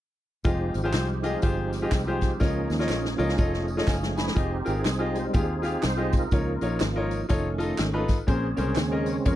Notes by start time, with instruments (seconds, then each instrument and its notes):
0.44 fingered electric bass F1, tonewheel organ F3 G#3 C4 D#4 G4, grand piano F4 G4 G#4 D#5, kick, closed hi-hat, tambourine
0.74 fingered electric bass G#1, closed hi-hat, tambourine
0.84 grand piano F4 G4 G#4 C5
0.93 fingered electric bass C2, snare, clap, closed hi-hat, tambourine
1.23 grand piano F4 G4 G#4 D#5, closed hi-hat, tambourine
1.42 fingered electric bass G1, grand piano F4 G4 G#4 C5, kick, closed hi-hat, tambourine
1.73 snare, closed hi-hat, tambourine
1.82 grand piano F4 G4 G#4 D#5
1.92 fingered electric bass C2, kick, snare, clap, closed hi-hat, tambourine
2.07 grand piano F4 G4 G#4 C5
2.21 kick, snare, closed hi-hat, tambourine
2.40 fingered electric bass C#2, grand piano C#3 F4 A#4 C#5 D#5, tonewheel organ A#3 C#4 G#4, kick, snare, tambourine
2.70 fingered electric bass D#2, snare, tambourine
2.79 grand piano F4 A#4 C#5 D#5, snare
2.88 fingered electric bass A#1, snare, clap, tambourine
3.05 snare
3.18 fingered electric bass C#2, grand piano F4 A#4 C#5 D#5, tambourine
3.29 snare
3.38 fingered electric bass F1, tonewheel organ F3 A3, grand piano F4 A4 C#5 D#5, kick, tambourine
3.54 snare
3.68 tonewheel organ C#4 D#4 G#4, tambourine
3.77 grand piano F4 A4 C#5 D#5, snare
3.87 fingered electric bass F#1, grand piano F5 G#5, kick, snare, clap, tambourine
4.03 snare
4.17 grand piano G#5 B5, snare, tambourine
4.27 snare
4.35 fingered electric bass F1, tonewheel organ C4 D#4, grand piano F4 G4 G#4 D#5, kick, closed hi-hat, tambourine
4.40 tonewheel organ G4
4.65 fingered electric bass G#1, grand piano F4 G4 G#4 A#4, closed hi-hat, tambourine
4.78 tonewheel organ C4 D#4 G#4
4.85 fingered electric bass C2, snare, clap, closed hi-hat, tambourine
4.99 grand piano F4 G4 G#4 D#5
5.15 tonewheel organ G3 G#3 D#4 C5, closed hi-hat, tambourine
5.33 fingered electric bass D#2, tonewheel organ C4 D#4 G#4, grand piano F4 G4 G#4 F5, kick, closed hi-hat, tambourine
5.62 grand piano F4 G4 G#4 F5, snare, closed hi-hat, tambourine
5.83 fingered electric bass C2, tonewheel organ C5, snare, clap, closed hi-hat, tambourine
5.97 grand piano F4 G4 G#4 D#5
6.13 kick, closed hi-hat, tambourine
6.17 tonewheel organ D#4 F4 A#4
6.31 fingered electric bass C#2, grand piano C#3 D#4 F4 A#4 C#5, tonewheel organ F3 A#3 D#4, kick, closed hi-hat, tambourine
6.61 fingered electric bass A#1, grand piano D#4 F4 A#4 C#5, closed hi-hat, tambourine
6.80 fingered electric bass G#1, snare, clap, closed hi-hat, tambourine
6.96 grand piano D#4 F4 A#4 C#5
7.11 closed hi-hat, tambourine
7.29 fingered electric bass F1, tonewheel organ D#3 A3 C#4, grand piano D#4 F4 A4 C#5, kick, closed hi-hat, tambourine
7.58 grand piano D#4 F4 A4 D#5, closed hi-hat, tambourine
7.78 fingered electric bass G#1, snare, clap, closed hi-hat, tambourine
7.93 grand piano D#4 F4 A4 B4
8.08 kick, snare, closed hi-hat, tambourine
8.27 fingered electric bass A#1, grand piano A#2 C#4 G#4 A#4 C5, tonewheel organ C4 C#4 G#4, kick, closed hi-hat, tambourine
8.57 fingered electric bass C2, tonewheel organ C#3 G#3 C4, grand piano C#4 G#4 A#4 C5, closed hi-hat, tambourine
8.68 tonewheel organ C4 C#4 G#4
8.75 fingered electric bass D#2, snare, clap, closed hi-hat, tambourine
8.92 grand piano C#4 G#4 A#4 D#5
9.06 tonewheel organ C#5, closed hi-hat, tambourine
9.25 fingered electric bass F2, grand piano C#4 G#4 A#4 C#5, tonewheel organ C#4 F4 A#4, kick, closed hi-hat, tambourine